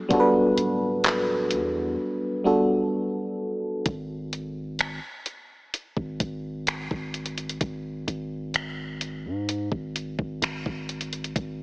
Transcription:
0.09 E1 G3 B3 D4 F#4, kick, closed hi-hat
0.13 A4
0.20 B4
0.57 D1, closed hi-hat
1.04 clap, closed hi-hat
1.51 E2, closed hi-hat
2.44 G3 B3 D4 F#4 A4
3.86 G#1, kick, closed hi-hat
4.33 closed hi-hat
4.79 finger snap, closed hi-hat
5.26 closed hi-hat
5.74 closed hi-hat
5.97 G#1, kick
6.20 G#1, kick, closed hi-hat
6.67 finger snap, closed hi-hat
6.91 G#1, kick
7.14 closed hi-hat
7.26 closed hi-hat
7.38 closed hi-hat
7.49 closed hi-hat
7.61 G#1, kick, closed hi-hat
8.08 G#1, closed hi-hat
8.54 finger snap, closed hi-hat
9.01 closed hi-hat
9.25 G#2
9.49 closed hi-hat
9.72 G#1, kick
9.96 closed hi-hat
10.19 G#1, kick
10.42 G#1, finger snap, closed hi-hat
10.66 G#1, kick
10.89 closed hi-hat
11.01 closed hi-hat
11.13 closed hi-hat
11.24 closed hi-hat
11.36 G#1, kick, closed hi-hat

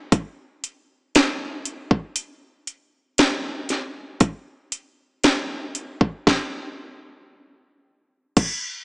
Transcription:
0.12 kick, closed hi-hat
0.64 closed hi-hat
1.15 snare, closed hi-hat
1.65 closed hi-hat
1.91 kick
2.16 closed hi-hat
2.67 closed hi-hat
3.18 snare, closed hi-hat
3.69 snare, closed hi-hat
4.20 kick, closed hi-hat
4.72 closed hi-hat
5.24 snare, closed hi-hat
5.75 closed hi-hat
6.01 kick
6.27 kick, snare
8.37 kick, closed hi-hat, crash

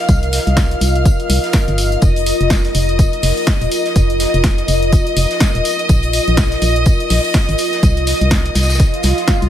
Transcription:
Already playing: F4 A#4 D#5 F5 F6
0.09 C2, kick, closed hi-hat, tambourine
0.23 closed hi-hat
0.33 snare, open hi-hat, tambourine
0.47 C2, closed hi-hat
0.57 kick, snare, closed hi-hat, tambourine
0.71 closed hi-hat
0.81 C2, open hi-hat, tambourine
0.95 closed hi-hat
1.05 kick, closed hi-hat, tambourine
1.20 closed hi-hat
1.30 C2, open hi-hat, tambourine
1.44 snare, closed hi-hat
1.53 kick, snare, closed hi-hat, tambourine
1.68 G1, closed hi-hat
1.78 open hi-hat, tambourine
1.92 closed hi-hat
2.02 F1 D#5 D#6, kick, closed hi-hat, tambourine
2.16 closed hi-hat
2.26 open hi-hat, tambourine
2.41 F1, closed hi-hat
2.50 kick, snare, closed hi-hat, tambourine
2.65 snare, closed hi-hat
2.75 F1, open hi-hat, tambourine
2.89 closed hi-hat
2.99 kick, closed hi-hat, tambourine
3.13 closed hi-hat
3.23 F1, snare, open hi-hat
3.37 closed hi-hat
3.47 kick, snare, closed hi-hat, tambourine
3.61 D#1, closed hi-hat
3.72 open hi-hat, tambourine
3.86 snare, closed hi-hat
3.96 F1, kick, closed hi-hat, tambourine
4.10 closed hi-hat
4.20 snare, open hi-hat, tambourine
4.34 F1, closed hi-hat
4.44 kick, snare, closed hi-hat, tambourine
4.58 closed hi-hat
4.68 F1, open hi-hat, tambourine
4.83 closed hi-hat
4.92 kick, closed hi-hat, tambourine
5.07 closed hi-hat
5.17 F1, open hi-hat, tambourine
5.31 snare, closed hi-hat
5.40 kick, snare, closed hi-hat, tambourine
5.55 D#1, closed hi-hat
5.65 open hi-hat, tambourine
5.79 closed hi-hat
5.89 A#1, kick, closed hi-hat, tambourine
6.03 closed hi-hat
6.13 open hi-hat, tambourine
6.28 A#1, closed hi-hat
6.37 kick, snare, closed hi-hat, tambourine
6.52 snare, closed hi-hat
6.62 A#1, open hi-hat, tambourine
6.76 closed hi-hat
6.86 kick, closed hi-hat, tambourine
7.00 closed hi-hat
7.10 A#1, snare, open hi-hat
7.24 closed hi-hat
7.34 kick, snare, closed hi-hat, tambourine
7.49 G#1, closed hi-hat
7.58 open hi-hat, tambourine
7.73 snare, closed hi-hat
7.83 C2, kick, closed hi-hat, tambourine
7.97 closed hi-hat
8.07 snare, open hi-hat, tambourine
8.21 C2, closed hi-hat
8.31 kick, snare, closed hi-hat, tambourine
8.46 closed hi-hat
8.55 C2, snare, open hi-hat, tambourine
8.63 snare, tambourine
8.70 snare, closed hi-hat, tambourine
8.75 snare, tambourine
8.80 kick, closed hi-hat, tambourine, swell
8.94 closed hi-hat
9.03 C2, snare, open hi-hat, tambourine
9.17 snare, closed hi-hat
9.28 kick, snare, closed hi-hat, tambourine
9.42 C2, closed hi-hat

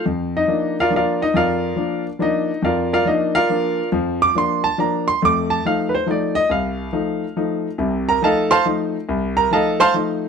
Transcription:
0.06 F2
0.37 D#4 D#5
0.48 F3 A#3 D4
0.80 F4 A#4 D5 F5
0.90 F3 A#3 D4
0.96 F4 A#4 D5 F5
1.22 D#4 D#5
1.34 F2 F4 A#4 D5 F5
1.76 F3 A#3 D4
2.19 F3 A#3 D4 D#4 D#5
2.62 F2 F4 A#4 D5 F5
2.93 F4 A#4 D5 F5
3.05 F3 A#3 D4 D#4 D#5
3.35 F4 A#4 D5 F5
3.50 F3 A#3 D4
3.92 F2 F3
4.22 D6
4.35 F3 A#3 D4 C6
4.64 A5
4.78 F3 A#3 D4 A#5
5.08 C6
5.22 F2 A3 D6
5.50 A5
5.65 F3 A3 D#4 F5
5.89 B4
5.95 C5
6.06 F3 A3 D#4
6.11 D5
6.35 D#5
6.49 C2 F5
6.93 F3 A3 D#4
7.37 F3 A3 D#4
7.78 C2 C3
8.09 A#4 A#5
8.22 F3 A3 D#4 A4 D#5 F5 A5
8.51 C5 F5 A5 C6
8.65 F3 A3 D#4
9.09 C2
9.37 A#4 A#5
9.51 F3 A3 D#4 A4 D#5 F5 A5
9.80 C5 F5 A5 C6
9.94 F3 A3 D#4

